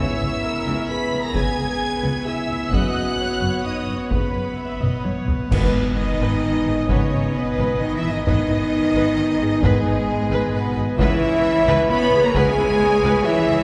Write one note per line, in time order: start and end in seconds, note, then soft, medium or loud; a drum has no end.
0.00 0.15 C#3 medium
0.00 0.15 B3 medium
0.00 5.47 B3 medium
0.00 0.86 E4 medium
0.00 2.68 G#4 medium
0.00 0.43 C#5 medium
0.00 5.51 C#5 medium
0.00 0.86 E5 medium
0.00 2.68 G#5 medium
0.00 0.85 E6 loud
0.21 0.29 C#2 medium
0.21 0.29 C#3 medium
0.43 0.88 A#4 medium
0.66 0.74 C#2 medium
0.66 0.75 C#3 medium
0.88 1.81 G#4 medium
0.88 1.23 B4 medium
0.88 1.23 B5 medium
0.88 1.23 B6 medium
1.12 1.20 C#2 medium
1.12 1.21 C#3 medium
1.23 1.35 A#4 medium
1.23 1.35 A#5 medium
1.23 1.35 A#6 medium
1.34 1.42 C#2 medium
1.34 1.50 C#3 medium
1.34 1.44 C#3 medium
1.34 1.51 B3 medium
1.34 2.27 G#4 medium
1.34 2.24 G#5 medium
1.34 2.26 G#6 loud
1.34 taiko medium
1.57 1.65 C#2 medium
1.57 1.66 C#3 medium
1.81 2.27 B4 medium
2.02 2.10 C#2 medium
2.02 2.12 C#3 medium
2.25 2.72 E4 medium
2.25 2.72 E5 medium
2.25 2.73 E5 medium
2.25 2.71 E6 medium
2.49 2.57 C#2 medium
2.49 2.58 C#3 medium
2.71 2.79 F#1 medium
2.71 2.81 F#2 medium
2.71 2.89 C#3 medium
2.71 2.88 B3 medium
2.71 3.63 F#4 medium
2.71 5.49 B4 medium
2.71 3.18 D#5 medium
2.71 3.64 F#5 medium
2.71 5.51 F#5 medium
2.71 3.65 F#6 loud
2.71 taiko loud
2.94 3.02 F#1 medium
2.94 3.03 F#2 medium
3.19 4.09 C#5 medium
3.41 3.49 F#1 medium
3.41 3.50 F#2 medium
3.64 3.98 D#4 medium
3.64 3.99 D#5 medium
3.64 3.99 D#6 medium
3.87 3.95 F#1 soft
3.87 3.96 F#2 soft
3.98 4.10 C#4 medium
3.98 4.11 C#5 soft
3.98 4.12 C#6 medium
4.09 4.18 F#1 medium
4.09 4.19 F#2 medium
4.09 4.28 C#3 medium
4.09 5.02 B3 medium
4.09 4.28 B3 medium
4.09 5.03 B4 medium
4.09 4.53 B4 medium
4.09 5.03 B5 medium
4.09 taiko loud
4.34 4.42 F#1 soft
4.34 4.43 F#2 soft
4.57 4.79 E5 medium
4.81 4.89 F#1 medium
4.81 4.89 F#2 medium
4.81 5.05 D#5 medium
4.81 taiko mid medium
5.04 5.28 C#5 medium
5.04 taiko high medium
5.27 5.35 F#1 soft
5.27 5.36 F#2 soft
5.27 5.51 B4 medium
5.27 taiko low medium
5.50 5.58 G#1 medium
5.50 6.16 G#2 medium
5.50 5.94 B2 medium
5.50 5.67 D#3 medium
5.50 5.67 B3 medium
5.50 5.94 B3 medium
5.50 10.95 B3 medium
5.50 5.94 B4 medium
5.50 10.95 B4 medium
5.50 5.73 B4 medium
5.50 10.95 D#5 medium
5.50 10.95 G#5 medium
5.50 concert bass drum medium
5.50 taiko loud
5.50 crash medium
5.74 5.82 G#1 medium
5.74 5.83 D#4 medium
5.96 6.89 D#3 medium
5.96 6.89 D#4 loud
5.96 6.87 D#5 medium
5.96 6.89 D#5 medium
6.20 6.28 G#1 medium
6.20 6.42 B4 medium
6.66 6.74 G#1 medium
6.66 6.75 G#4 medium
6.88 6.97 G#1 medium
6.88 7.34 C#3 medium
6.88 7.05 D#3 medium
6.88 7.05 B3 medium
6.88 7.34 C#4 medium
6.88 7.11 B4 medium
6.88 7.34 C#5 medium
6.88 7.36 C#5 medium
6.88 taiko loud
7.13 7.21 G#1 medium
7.13 7.21 D#4 medium
7.35 7.81 B2 medium
7.35 7.81 B3 medium
7.35 7.80 B4 medium
7.35 7.81 B4 medium
7.58 7.66 G#1 medium
7.58 7.80 B4 medium
7.81 7.96 D#3 medium
7.81 7.96 D#4 medium
7.81 7.97 D#5 medium
7.96 8.12 E3 medium
7.96 8.12 E4 medium
7.96 8.11 E5 medium
8.04 8.12 G#1 medium
8.04 8.12 G#4 medium
8.11 8.26 D#3 medium
8.11 8.25 D#4 medium
8.11 8.25 D#5 medium
8.11 8.24 D#5 medium
8.26 8.34 G#1 medium
8.26 8.43 D#3 medium
8.26 9.61 D#3 medium
8.26 8.42 B3 medium
8.26 9.60 D#4 loud
8.26 8.48 B4 medium
8.26 9.60 D#5 loud
8.26 taiko loud
8.49 8.57 G#1 medium
8.49 8.58 D#4 medium
8.95 9.03 G#1 medium
8.95 9.16 B4 medium
9.40 9.48 G#1 medium
9.40 9.49 G#4 medium
9.62 9.71 G#1 medium
9.62 10.52 G#2 medium
9.62 9.79 D#3 medium
9.62 10.54 G#3 loud
9.62 9.79 B3 medium
9.62 10.53 G#4 medium
9.62 10.52 G#4 medium
9.62 9.85 B4 loud
9.62 taiko loud
9.86 9.94 G#1 medium
9.86 9.94 D#4 medium
10.32 10.40 G#1 loud
10.32 10.53 B4 medium
10.53 10.76 B2 medium
10.53 10.77 B3 loud
10.53 10.76 B4 medium
10.53 10.77 B4 medium
10.76 10.84 G#1 medium
10.76 10.85 G#4 medium
10.98 11.07 C#2 loud
10.98 11.15 C#3 medium
10.98 11.86 E3 loud
10.98 11.15 B3 medium
10.98 13.63 C#4 medium
10.98 11.86 E4 loud
10.98 13.63 B4 medium
10.98 11.21 B4 loud
10.98 13.63 C#5 medium
10.98 11.85 E5 loud
10.98 11.86 E5 loud
10.98 13.63 G#5 medium
10.98 taiko loud
11.22 11.30 C#2 medium
11.22 11.31 E4 medium
11.66 11.74 C#2 loud
11.66 11.89 B4 loud
11.89 12.24 B3 loud
11.89 12.24 B4 loud
11.89 12.24 B5 loud
11.89 12.23 B5 loud
12.12 12.20 C#2 medium
12.12 12.22 G#4 medium
12.23 12.35 A#3 loud
12.23 12.36 A#4 loud
12.23 12.35 A#5 loud
12.34 12.43 C#2 loud
12.34 12.50 C#3 loud
12.34 13.24 G#3 loud
12.34 12.50 B3 loud
12.34 13.24 G#4 loud
12.34 12.57 B4 loud
12.34 13.24 G#5 loud
12.34 13.26 G#5 loud
12.34 taiko loud
12.57 12.65 C#2 medium
12.57 12.67 E4 medium
13.03 13.11 C#2 loud
13.03 13.25 B4 loud
13.26 13.63 E3 loud
13.26 13.63 E4 loud
13.26 13.63 E5 loud
13.49 13.57 C#2 medium
13.49 13.58 G#4 loud